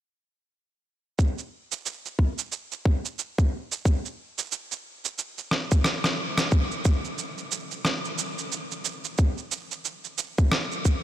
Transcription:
1.19 kick, shaker
1.39 shaker
1.72 shaker
1.86 shaker
2.06 shaker
2.19 kick
2.39 shaker
2.52 shaker
2.72 shaker
2.85 kick
3.05 shaker
3.19 shaker
3.38 kick, shaker
3.72 shaker
3.85 kick, shaker
4.06 shaker
4.38 shaker
4.52 shaker
4.72 shaker
5.05 shaker
5.19 shaker
5.38 shaker
5.51 cross-stick
5.72 kick, shaker
5.84 cross-stick, shaker
6.04 cross-stick, shaker
6.38 cross-stick, shaker
6.52 kick, shaker
6.71 shaker
6.85 kick, shaker
7.05 shaker
7.18 shaker
7.38 shaker
7.52 shaker
7.71 shaker
7.85 cross-stick, shaker
8.05 shaker
8.19 shaker
8.38 shaker
8.52 shaker
8.71 shaker
8.85 shaker
9.04 shaker
9.18 kick, shaker
9.38 shaker
9.52 shaker
9.71 shaker
9.85 shaker
10.04 shaker
10.18 shaker
10.38 kick, shaker
10.52 cross-stick, shaker
10.72 shaker
10.85 kick, shaker

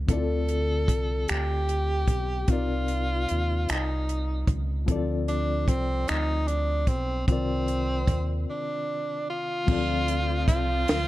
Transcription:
0.07 D2 D3 C4 E4 A4, kick, closed hi-hat
0.13 F4 D5
0.48 closed hi-hat
0.88 C2, kick, closed hi-hat
1.28 D2 G4, finger snap, closed hi-hat
1.69 closed hi-hat
2.08 B1, kick, closed hi-hat
2.47 C2 C3 C4 D#4 F4, kick, closed hi-hat
2.52 A#4 D5
2.88 closed hi-hat
3.29 D#2, closed hi-hat
3.69 C2 D#4, finger snap, closed hi-hat
4.09 closed hi-hat
4.47 C#2, kick, closed hi-hat
4.86 D2 F3 C4 E4, kick, closed hi-hat
4.90 A4 D5
4.96 F4
5.28 D4, closed hi-hat
5.68 C2 C4, kick, closed hi-hat
6.08 D2 D#4, finger snap, closed hi-hat
6.47 D4, closed hi-hat
6.87 B1 C4, kick, closed hi-hat
7.27 C2 C3 D#3 C4 F4, kick, closed hi-hat
7.31 A#4 D5
7.68 closed hi-hat
8.07 D#2, kick, closed hi-hat
8.50 D4
9.30 F4
9.67 D2 F3 C4 F4, kick, crash
9.71 A4 D5
10.08 closed hi-hat
10.48 C2 F4, kick, closed hi-hat
10.88 D2, snare, closed hi-hat

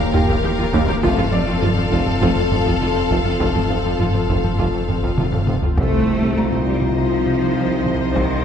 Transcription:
Already playing: D#1 F3 A#3 G4 A#4 F5
0.13 D#2 F4 G4 G5, taiko low-mid
0.28 D#2 G4, taiko
0.43 D#2 G4
0.58 D#2 F4
0.73 D#2 G4, taiko
0.88 D#2 G4
1.02 F1 F2 F3 A3 C4 F4 A4 F5, taiko
1.18 F2 F3 F4, taiko low-mid
1.32 F1 F2 C4 D5
1.47 F2 F4
1.62 F1 F2 F3 F4, taiko low-mid
1.77 F2 C4
1.92 F1 F2 F4, taiko
2.07 F3, taiko low-mid
2.21 F1 F2 A3 F4, taiko
2.37 F2
2.51 F1 F2 C4, taiko low-mid
2.66 F2 F4, taiko
2.81 F1 F2 F4
2.95 F2 C4
3.10 F1 F2 F4, taiko
3.24 F2 F4
3.39 F1 F2 A3 F4, taiko
3.55 F2 F3 F4, taiko low-mid
3.69 F1 F2 C4 F5
3.84 F2 F4
3.99 F1 F2 F3 F4, taiko low-mid
4.13 F2 C4
4.29 F1 F2 F4, taiko
4.44 F3, taiko low-mid
4.58 F1 F2 A3 F4, taiko
4.74 F2
4.88 F1 F2 C4, taiko low-mid
5.03 F2 F4, taiko
5.18 F1 F2 F4, taiko mid
5.33 F2 C4, taiko low-mid
5.47 F1 F2 F4, taiko mid
5.62 F2 F4, taiko low
5.76 C2 G3 A3 C4 D#4 A4 C5 D#5 A#5, taiko, impact
5.92 C2
6.07 C3 G4
6.22 C3, taiko mid
6.37 C2 F4 A#5
6.52 C2, taiko mid
6.67 C2 G3
6.81 C2, taiko mid
6.96 C2 F3
7.11 C3
7.26 C2
7.42 C2
7.56 C2 D#4 F5
7.71 C2
7.86 C2, taiko mid
8.01 C2
8.15 C2 D#3 G4 C5 C6, taiko
8.30 C2

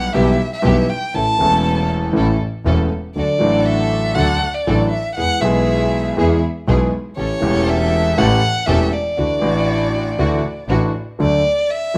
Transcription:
Already playing: B1 B2 B3 G4 F#5
0.13 B1 B2 E3 G3 B3 E4 G4 E5
0.53 E5
0.62 B1 B2 E3 G3 B3 E4 G4
0.90 G5
1.14 A1 A2 E3 A3 C#4 E4 A4 A5
1.38 E1 E2 E3 A3 C#4 E4 A4
1.43 A4
2.12 A1 A2 E3 A3 C#4 E4 A4
2.65 E1 E2 E3 A3 C#4 E4 A4
3.16 D2 D3 F#3 A3 D4 F#4 A4 D5
3.39 A1 A2 F#3 A3 D4 F#4 A4
3.43 A4
3.66 E5
4.15 D2 D3 F#3 A3 D4 F#4 A4 F#5
4.54 D5
4.67 A1 A2 F#3 A3 D4 F#4 A4
4.90 E5
5.16 E2 E3 G#3 B3 E4 G#4 F#5
5.40 B1 B2 E3 G#3 B3 E4 G#4 E5
5.45 G#4
6.17 E2 E3 G#3 B3 E4 G#4
6.67 B1 B2 E3 G#3 B3 E4 G#4
7.17 A1 A2 E3 A3 C#4 G4 A4 C#5
7.40 E1 E2 E3 A3 C#4 G4 A4
7.69 E5
8.17 A1 A2 E3 A3 C#4 G4 A4 F#5
8.66 E1 E2 E3 A3 C#4 G4 A4 E5
8.93 D5
9.16 D2 D3 E3 A3 D4 E4 F#4
9.40 A1 A2 E3 A3 D4 E4 F#4
9.44 F#4
10.18 D2 D3 E3 A3 D4 E4 F#4
10.68 A1 A2 E3 A3 D4 E4 F#4
11.19 D2 D3 F#3 A3 D4 A4 D5
11.71 E5
11.94 F#3

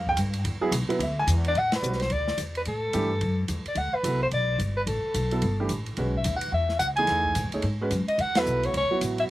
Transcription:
Already playing: F2
0.07 G5, kick
0.17 G2, hi-hat pedal, ride
0.33 ride
0.44 E2, ride
0.61 F#3 B3 E4 G#4, muted upright bass stroke
0.72 B1, hi-hat pedal, ride
0.89 F#3 B3 E4 B4, muted upright bass stroke, ride
0.99 D2 E5, ride
1.19 G#5
1.27 E2, hi-hat pedal, ride
1.44 D5, ride
1.55 A1 F#5, ride
1.72 B4, snare, ride
1.82 B1 G3 C4 F#4 B4, hi-hat pedal
1.93 snare
2.00 C5, snare, ride
2.10 D2 D5, ride
2.28 snare
2.37 E2, hi-hat pedal, ride
2.55 B4, ride
2.65 A2 A4, ride
2.93 G2 E3 A3 D4 G4, hi-hat pedal, ride
3.21 F#2, ride
3.48 E2, hi-hat pedal, ride
3.65 D5, muted upright bass stroke, ride
3.75 D2 F#5, ride
3.93 B4, muted upright bass stroke
4.03 C2 F#3 B3 E4 A4, hi-hat pedal, ride
4.23 C5
4.31 B1 D5, ride
4.58 G1, hi-hat pedal, ride
4.77 B4
4.87 A1 A4, ride
5.04 muted upright bass stroke
5.14 B1, hi-hat pedal, ride
5.31 F#3 B3 E4 A4, ride
5.42 G1, ride
5.60 E3 A3 D4 G4
5.69 A1, hi-hat pedal, ride
5.86 ride
5.97 B1 G#3 C#4 F#4 B4, ride
6.14 E5, kick
6.24 D#2, hi-hat pedal, ride
6.37 F#5
6.41 ride
6.52 E2 E5
6.69 snare
6.79 C#2 F#5, hi-hat pedal, ride
6.96 E3 A3 D#4 G#4 G#5, ride
7.07 E2, snare, ride
7.25 kick
7.35 A2, hi-hat pedal, ride
7.44 F#2
7.52 E2 A3 D#4 G#4 C#5, ride
7.62 G#2, ride
7.81 G#3 C#4 F#4 B4
7.91 F#2, hi-hat pedal, ride
8.08 D#5, muted upright bass stroke, ride
8.18 E2 F#5, ride
8.35 F#3 B3 E4 A4 B4, snare, ride
8.46 B1, hi-hat pedal
8.63 C#5, ride
8.73 C#2 C#5, ride
8.91 F#3 B3 E4 F#4, muted upright bass stroke
9.01 A1, hi-hat pedal, ride
9.18 E5, ride

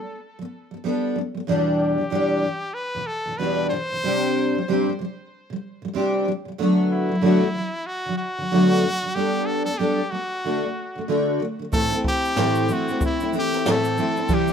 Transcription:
Already playing: G3 B3 A4
0.39 G3 B3
0.71 G3 B3
0.84 G3 B3 D4 A4
1.16 G3 B3
1.34 G3 B3
1.47 E2 B2 E3 G3 D4 G4
1.80 G4
1.98 E2 B2 E3
2.10 E2 B2 E3 G3 D4 G4
2.42 E2 B2 E3
2.74 B4
2.95 E2 B2 E3
3.07 A4
3.26 E2 B2 E3
3.38 E2 B2 E3 G3 D4 G4 B4
3.70 E2 B2 E3 C5
3.90 E2 B2 E3
4.04 C3 G3 C4 D4 G4
4.55 C3 G3
4.68 C3 G3 C4 D4 G4
4.86 C3 G3
4.99 C3 G3
5.50 C3 G3
5.82 C3 G3
5.93 C3 G3 C4 D4 G4
6.25 C3 G3
6.45 C3 G3
6.58 D3 F#3 A3 B3 F#4
6.93 E4
7.09 D3 F#3
7.21 D3 F#3 A3 B3 F#4
7.42 D3 F#3
7.54 D3 F#3
7.86 F#4
8.06 D3 F#3
8.18 F#4
8.38 D3 F#3
8.51 D3 F#3 A3 B3 F#4
8.83 D3 F#3
9.03 D3 F#3
9.15 G3 B3 D4 G4 A4
9.46 A4
9.66 G3 B3 A4
9.78 G3 B3 D4 G4 A4
9.99 G3
10.11 G3 B3 F#4
10.44 D3 A3 D4 F#4
10.63 D3 A3
10.95 D3 A3
11.08 D3 A3 D4 F#4
11.40 D3 A3
11.59 D3 A3
11.72 A2 E3 A3 C4 E4 A4, kick, shaker
11.92 A3 C4 E4, shaker
12.04 G4, kick
12.25 shaker
12.36 A2 E3 A3 C4 E4, snare, shaker
12.55 shaker
12.68 E3 A3 C4 E4, shaker
12.73 F#4
12.88 A3 C4 E4, shaker
13.01 kick, shaker
13.06 E4
13.20 A3 C4 E4, shaker
13.32 E3 A3 C4 E4, shaker
13.39 G4
13.53 snare, shaker
13.66 A2 E3 A3 C4 E4, snare, shaker
13.71 A4
13.84 shaker
13.97 E3 A3 C4 E4, shaker
14.16 A3 C4 E4, shaker
14.28 C3 E3 G3 C4 E4, kick, shaker
14.34 G4
14.48 C4 E4, shaker

